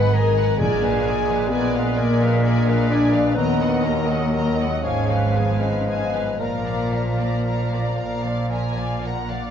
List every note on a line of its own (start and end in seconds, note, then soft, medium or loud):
0.00 0.44 G#1 medium
0.00 0.44 G#2 medium
0.00 0.63 G#2 medium
0.00 0.64 D#3 soft
0.00 0.36 F#3 medium
0.00 0.32 G#3 soft
0.00 0.13 D#4 medium
0.00 0.13 B4 medium
0.00 0.15 B4 soft
0.00 0.28 D#5 medium
0.00 0.14 F#5 medium
0.00 0.13 G#5 soft
0.00 0.16 B5 medium
0.12 0.64 D#4 medium
0.12 0.38 G#4 medium
0.12 0.60 A#4 medium
0.12 0.36 D#5 medium
0.12 0.37 G#5 medium
0.12 0.59 A#5 medium
0.35 0.64 F#3 soft
0.35 0.61 B4 medium
0.35 0.59 F#5 soft
0.35 0.59 G#5 medium
0.58 1.82 A#1 medium
0.58 1.82 A#2 medium
0.58 1.94 A#2 medium
0.58 3.41 A#2 medium
0.58 3.33 G#3 medium
0.58 1.49 G#4 loud
0.58 0.82 A#4 medium
0.58 3.32 D5 medium
0.58 0.81 D5 medium
0.58 1.50 G#5 medium
0.58 0.82 G#5 medium
0.83 1.28 F3 soft
0.83 1.06 A#4 medium
0.83 1.06 B4 medium
0.83 1.07 F5 medium
1.06 1.45 F#3 soft
1.06 1.29 A#4 medium
1.06 1.29 D5 medium
1.06 1.30 G#5 medium
1.29 2.20 F3 soft
1.29 1.52 A#4 medium
1.29 1.52 B4 medium
1.29 1.52 F5 medium
1.50 1.96 A#3 soft
1.50 1.97 B3 medium
1.50 1.73 A#4 medium
1.50 2.00 B4 medium
1.50 1.74 D5 medium
1.50 1.73 G#5 medium
1.75 2.14 B3 soft
1.75 1.98 A#4 medium
1.75 1.98 B4 medium
1.75 1.98 F5 medium
1.97 3.21 A#1 medium
1.97 3.21 A#2 medium
1.97 4.88 A#3 soft
1.97 2.89 A#3 medium
1.97 2.21 A#4 medium
1.97 2.89 A#4 medium
1.97 2.21 D5 medium
1.97 2.21 G#5 medium
2.21 2.66 F3 medium
2.21 2.44 A#4 medium
2.21 2.44 B4 medium
2.21 2.44 F5 medium
2.44 2.90 D4 medium
2.44 2.65 A#4 medium
2.44 2.66 D5 medium
2.44 2.65 G#5 soft
2.66 3.13 F3 soft
2.66 2.90 A#4 medium
2.66 2.91 B4 medium
2.66 2.90 F5 medium
2.90 3.36 D4 medium
2.90 3.41 D4 medium
2.90 3.15 A#4 medium
2.90 3.37 D5 medium
2.90 3.14 D5 medium
2.90 3.14 G#5 medium
3.12 3.41 F3 soft
3.12 3.37 A#4 soft
3.12 3.37 B4 medium
3.12 3.37 F5 soft
3.35 4.66 D#2 medium
3.35 4.88 D#3 medium
3.35 4.85 F#3 medium
3.35 3.84 B3 medium
3.35 3.60 A#4 medium
3.35 3.85 B4 medium
3.35 3.59 D#5 medium
3.35 4.84 D#5 medium
3.35 3.59 A#5 medium
3.60 4.08 D#4 soft
3.60 3.85 A#4 medium
3.60 3.85 D#5 soft
3.60 3.85 F#5 medium
3.84 4.66 A#3 medium
3.84 4.27 F4 soft
3.84 4.53 A#4 medium
3.84 4.09 A#4 medium
3.84 4.09 D#5 medium
3.84 4.09 A#5 soft
4.08 4.88 D#4 soft
4.08 4.33 A#4 soft
4.08 4.34 D#5 soft
4.08 4.34 F#5 soft
4.33 4.88 F#3 soft
4.33 4.57 A#4 medium
4.33 4.57 D#5 medium
4.33 4.58 A#5 soft
4.58 5.02 G#3 soft
4.58 4.84 A#4 medium
4.58 4.84 D#5 medium
4.58 4.84 F#5 soft
4.83 6.21 G#1 medium
4.83 6.21 G#2 medium
4.83 6.45 G#2 medium
4.83 6.39 F3 medium
4.83 5.34 C#4 medium
4.83 5.08 G#4 soft
4.83 5.37 C#5 medium
4.83 5.59 F5 medium
4.83 5.08 F5 medium
4.83 5.08 G#5 soft
5.09 5.60 F3 soft
5.09 5.35 B4 soft
5.09 5.35 F5 soft
5.09 5.35 G#5 soft
5.34 5.79 F#3 soft
5.34 5.44 B3 soft
5.34 5.60 G#4 soft
5.34 6.40 B4 medium
5.34 5.61 F5 soft
5.34 5.61 G#5 soft
5.44 5.53 C#4 soft
5.52 5.62 B3 soft
5.60 6.64 F3 soft
5.60 5.71 C#4 soft
5.60 5.87 B4 soft
5.60 6.40 D#5 medium
5.60 5.87 F5 soft
5.60 5.87 G#5 soft
5.71 5.80 B3 soft
5.79 5.89 C#4 soft
5.86 6.44 G#3 soft
5.86 5.98 B3 soft
5.86 6.11 G#4 soft
5.86 6.11 F5 soft
5.86 6.12 G#5 soft
5.96 6.07 C#4 soft
6.05 6.39 B3 medium
6.12 6.58 A#3 soft
6.12 6.39 B4 soft
6.12 6.40 F5 soft
6.12 6.41 G#5 soft
6.38 7.79 A#1 medium
6.38 9.51 A#2 soft
6.38 7.79 A#2 medium
6.38 9.16 F3 medium
6.38 7.93 A#3 medium
6.38 6.65 A#4 soft
6.38 7.95 A#4 medium
6.38 9.20 D5 medium
6.38 6.64 F5 soft
6.38 6.64 A#5 soft
6.65 7.17 F3 soft
6.65 6.93 D5 soft
6.65 6.93 F5 soft
6.65 6.92 A#5 soft
6.92 7.37 F#3 soft
6.92 7.19 A#4 soft
6.92 7.19 F5 soft
6.92 7.19 A#5 soft
7.18 8.22 F3 soft
7.18 7.45 D5 soft
7.18 7.45 F5 soft
7.18 7.45 A#5 soft
7.45 7.96 A#3 soft
7.45 7.70 A#4 soft
7.45 7.70 F5 soft
7.45 7.69 A#5 soft
7.71 8.16 B3 soft
7.71 7.98 D5 soft
7.71 7.97 F5 soft
7.71 7.99 A#5 soft
7.97 9.38 A#1 medium
7.97 9.38 A#2 soft
7.97 9.51 A#3 soft
7.97 8.23 A#4 soft
7.97 8.47 F5 medium
7.97 8.24 A#5 soft
8.23 8.75 F3 soft
8.23 8.50 D5 soft
8.23 8.50 F5 soft
8.49 9.03 F4 soft
8.49 8.75 A#4 soft
8.49 9.04 G#5 medium
8.49 8.75 A#5 soft
8.75 9.29 F3 soft
8.75 9.03 D5 soft
8.75 9.04 F5 soft
9.02 9.51 F4 soft
9.02 9.29 A#4 soft
9.02 9.51 F#5 soft
9.02 9.30 A#5 soft
9.29 9.51 F3 soft
9.29 9.51 D5 soft
9.29 9.51 F5 soft